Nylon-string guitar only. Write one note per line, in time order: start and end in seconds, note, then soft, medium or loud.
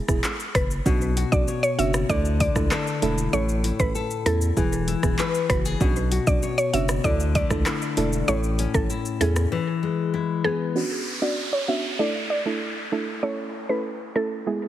0.86 2.16 B2 medium
1.17 1.78 F#4 medium
1.48 2.16 C#5 medium
1.79 2.16 F#4 medium
2.10 3.39 D3 medium
2.41 3.39 D4 medium
2.71 3.39 A4 medium
3.02 3.64 E4 medium
3.33 4.63 A2 medium
3.64 4.25 E4 medium
3.95 4.63 A4 medium
4.26 4.63 E4 medium
4.57 5.87 E3 medium
4.88 5.87 E4 medium
5.19 5.87 B4 medium
5.50 5.65 F#4 medium
5.65 5.87 G#4 medium
5.81 7.11 B2 medium
6.12 6.72 F#4 medium
6.43 7.11 C#5 medium
6.74 7.11 F#4 medium
7.04 8.34 D3 medium
7.35 8.34 A3 medium
7.66 8.90 E4 medium
7.97 8.34 D4 medium
8.28 9.58 A2 medium
8.59 9.20 C#4 medium
8.90 9.58 E4 medium
9.21 9.58 C#4 medium
9.52 10.82 E3 medium
9.83 10.82 G#3 medium
10.14 10.82 E4 medium
10.45 10.82 B3 medium